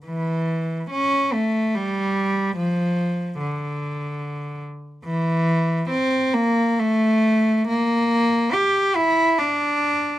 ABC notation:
X:1
M:3/4
L:1/8
Q:1/4=71
K:Dm
V:1 name="Cello"
E,2 ^C A, G,2 | F,2 D,3 z | E,2 C B, A,2 | B,2 G E D2 |]